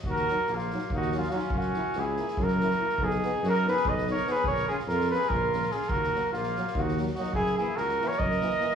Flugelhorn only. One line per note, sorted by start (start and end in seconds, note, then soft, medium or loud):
0.11 0.57 A#4 loud
0.55 0.95 F4 medium
0.96 1.20 F#4 medium
1.18 1.30 F4 medium
1.30 1.39 F#4 medium
1.37 1.59 F4 medium
1.57 2.01 F#4 loud
2.00 2.45 G#4 medium
2.43 3.06 A#4 loud
3.04 3.45 G#4 loud
3.49 3.68 A#4 loud
3.69 3.90 B4 loud
3.89 4.09 D#5 medium
4.11 4.33 C#5 loud
4.32 4.46 B4 loud
4.47 4.68 C#5 loud
4.68 4.77 G#4 medium
4.88 5.10 A#4 medium
5.11 5.30 B4 loud
5.28 5.73 A#4 medium
5.72 5.90 G#4 medium
5.89 6.32 A#4 loud
6.32 6.81 F4 medium
6.79 6.99 F#4 medium
7.14 7.33 F#4 medium
7.35 7.57 G#4 loud
7.57 7.79 G#4 loud
7.77 8.09 A#4 loud
8.07 8.20 C#5 loud
8.19 8.75 D#5 loud